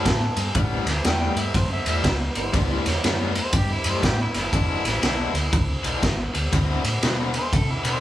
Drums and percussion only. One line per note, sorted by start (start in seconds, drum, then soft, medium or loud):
0.05 kick medium
0.05 snare loud
0.05 ride medium
0.36 ride medium
0.55 kick loud
0.55 ride medium
0.87 snare soft
0.87 ride medium
1.04 snare loud
1.04 ride medium
1.36 ride medium
1.54 kick loud
1.54 snare soft
1.54 ride medium
1.86 ride medium
2.04 kick medium
2.04 snare loud
2.04 ride medium
2.35 ride medium
2.53 kick loud
2.53 snare soft
2.53 ride medium
2.86 snare soft
2.86 ride medium
3.04 snare loud
3.04 ride medium
3.35 ride medium
3.52 kick loud
3.52 snare soft
3.52 ride loud
3.84 ride medium
4.03 kick medium
4.03 snare loud
4.03 ride medium
4.34 snare soft
4.34 ride medium
4.53 kick loud
4.53 ride medium
4.85 snare soft
4.85 ride medium
5.03 snare loud
5.03 ride medium
5.35 ride medium
5.53 kick loud
5.53 ride medium
5.84 ride medium
6.03 kick medium
6.03 snare loud
6.03 ride medium
6.34 ride medium
6.53 kick loud
6.53 snare soft
6.53 ride medium
6.84 ride medium
7.02 snare loud
7.02 ride medium
7.34 ride medium
7.53 kick loud
7.53 ride medium
7.84 ride medium